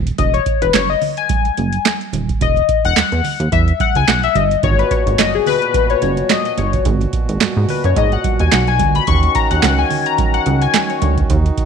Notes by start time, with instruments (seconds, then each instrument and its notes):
Already playing: analog synth bass D#1
0.07 closed hi-hat
0.18 analog synth bass E1, analog polysynth D#5, kick, closed hi-hat, muted conga, low conga
0.34 analog polysynth C#5, closed hi-hat, muted conga
0.46 kick, closed hi-hat
0.62 analog synth bass E1, analog polysynth B4, closed hi-hat
0.74 analog synth bass F#1, analog polysynth C#5, snare, clap, closed hi-hat, muted conga, high conga
0.89 analog polysynth D#5, muted conga
1.01 open hi-hat, low conga
1.17 analog polysynth G#5, closed hi-hat
1.29 kick, closed hi-hat, muted conga, high conga
1.45 closed hi-hat, muted conga
1.57 analog synth bass F#1, closed hi-hat, high conga
1.73 closed hi-hat
1.85 snare, clap, closed hi-hat, high conga
2.01 closed hi-hat
2.13 analog synth bass D#1, closed hi-hat, high conga, low conga
2.29 kick, closed hi-hat
2.41 analog synth bass E1, analog polysynth D#5, kick, closed hi-hat, muted conga, low conga
2.56 closed hi-hat, muted conga
2.69 kick, closed hi-hat
2.84 analog synth bass E1, analog polysynth F#5, closed hi-hat
2.96 analog synth bass E2, snare, clap, closed hi-hat, muted conga, high conga
3.12 analog synth bass E2, closed hi-hat, muted conga
3.24 analog polysynth F#5, open hi-hat, low conga
3.40 analog synth bass D#2, closed hi-hat
3.52 analog synth bass E2, analog polysynth E5, kick, closed hi-hat, muted conga, high conga
3.67 closed hi-hat, muted conga
3.80 analog polysynth F#5, kick, closed hi-hat, high conga
3.95 analog synth bass C#2, analog polysynth G#5, closed hi-hat
4.08 analog synth bass B1, analog polysynth F#5, snare, clap, closed hi-hat, muted conga, high conga
4.23 analog polysynth E5, closed hi-hat, muted conga
4.35 analog synth bass G1, analog polysynth D#5, closed hi-hat, high conga, low conga
4.51 closed hi-hat
4.63 analog synth bass G#1, harmonium A#2 B2 F#4, analog polysynth C#5, kick, closed hi-hat, low conga
4.79 analog polysynth B4, closed hi-hat, muted conga
4.91 analog polysynth C#5, kick, closed hi-hat
5.07 analog synth bass G#1, closed hi-hat
5.19 analog synth bass F#1, analog polysynth D#5, snare, clap, closed hi-hat, muted conga, high conga
5.34 analog polysynth G#4, muted conga
5.46 analog polysynth B4, open hi-hat, low conga
5.62 closed hi-hat
5.74 kick, closed hi-hat, high conga
5.90 analog polysynth C#5, closed hi-hat
6.02 analog synth bass F#1, analog polysynth C#5, closed hi-hat, high conga
6.17 closed hi-hat
6.30 analog polysynth D#5, snare, clap, closed hi-hat, muted conga, high conga
6.45 analog polysynth D#5, closed hi-hat, muted conga
6.58 analog synth bass G1, analog polysynth C#5, closed hi-hat, high conga, low conga
6.73 kick, closed hi-hat
6.85 analog synth bass G#1, kick, closed hi-hat, muted conga, low conga
7.01 closed hi-hat, muted conga
7.13 kick, closed hi-hat
7.29 analog synth bass G#1, closed hi-hat
7.41 analog synth bass G#2, snare, clap, closed hi-hat, muted conga, high conga
7.57 analog synth bass G#2
7.68 analog polysynth B4, open hi-hat, low conga
7.84 analog synth bass F#2, analog polysynth C#5, closed hi-hat
7.96 analog synth bass G#2, analog polysynth D#5, kick, closed hi-hat, muted conga, high conga
8.12 analog polysynth F#5, closed hi-hat, muted conga
8.24 kick, closed hi-hat, high conga
8.39 analog synth bass D#2, analog polysynth G#5, closed hi-hat
8.52 analog synth bass B1, analog polysynth F#5, snare, clap, closed hi-hat, high conga
8.67 analog polysynth G#5, closed hi-hat, muted conga
8.79 analog synth bass D2, kick, closed hi-hat, high conga, low conga
8.95 analog polysynth B5, closed hi-hat
9.07 analog synth bass D#2, harmonium D#3 C#4 F#4, analog polysynth C#6, kick, closed hi-hat, muted conga, low conga
9.23 closed hi-hat, muted conga
9.35 analog polysynth A#5, kick, closed hi-hat
9.51 analog synth bass D#2, analog polysynth F#5, closed hi-hat
9.63 analog synth bass C#2, analog polysynth F#5, snare, clap, closed hi-hat, muted conga, high conga
9.78 analog polysynth G#5, muted conga
9.90 open hi-hat, low conga
10.06 analog polysynth A#5, closed hi-hat
10.18 kick, closed hi-hat, muted conga, high conga
10.34 analog polysynth F#5, closed hi-hat, muted conga
10.46 analog synth bass C#2, closed hi-hat, high conga
10.62 analog polysynth G#5, closed hi-hat
10.74 snare, clap, closed hi-hat, muted conga, high conga
10.90 analog polysynth C#5, closed hi-hat, muted conga
11.02 analog synth bass D2, closed hi-hat, high conga, low conga
11.18 kick, closed hi-hat
11.30 analog synth bass D#2, harmonium D#4, kick, closed hi-hat, low conga
11.46 closed hi-hat
11.57 kick, closed hi-hat